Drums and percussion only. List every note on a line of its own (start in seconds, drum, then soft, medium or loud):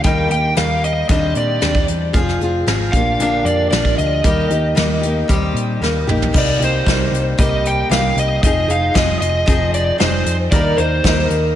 0.04 kick loud
0.04 closed hi-hat medium
0.31 closed hi-hat medium
0.56 snare loud
0.56 closed hi-hat medium
0.84 closed hi-hat medium
1.09 kick loud
1.09 closed hi-hat medium
1.35 closed hi-hat medium
1.61 snare loud
1.61 closed hi-hat medium
1.75 kick medium
1.88 closed hi-hat medium
2.14 kick loud
2.14 closed hi-hat medium
2.29 snare soft
2.41 closed hi-hat medium
2.67 snare loud
2.67 closed hi-hat medium
2.93 kick medium
2.93 closed hi-hat medium
3.20 closed hi-hat medium
3.46 closed hi-hat medium
3.72 snare loud
3.72 closed hi-hat medium
3.85 kick medium
3.98 closed hi-hat medium
4.24 kick loud
4.24 closed hi-hat medium
4.50 closed hi-hat medium
4.77 snare loud
4.77 closed hi-hat medium
5.03 closed hi-hat medium
5.29 kick loud
5.29 closed hi-hat medium
5.56 closed hi-hat medium
5.83 snare medium
6.09 mid tom medium
6.22 floor tom medium
6.34 kick loud
6.34 crash loud
6.62 closed hi-hat medium
6.87 kick medium
6.87 snare loud
6.87 closed hi-hat medium
7.14 closed hi-hat medium
7.39 kick loud
7.39 closed hi-hat medium
7.65 closed hi-hat medium
7.91 snare loud
7.91 closed hi-hat loud
8.17 closed hi-hat medium
8.43 kick loud
8.43 closed hi-hat loud
8.70 closed hi-hat medium
8.95 kick medium
8.95 snare loud
8.95 closed hi-hat loud
9.22 closed hi-hat medium
9.48 kick loud
9.48 closed hi-hat medium
9.74 closed hi-hat medium
10.00 snare loud
10.00 closed hi-hat medium
10.26 closed hi-hat medium
10.51 kick loud
10.51 closed hi-hat medium
10.78 closed hi-hat medium
11.04 kick medium
11.04 snare loud
11.04 closed hi-hat medium
11.30 closed hi-hat medium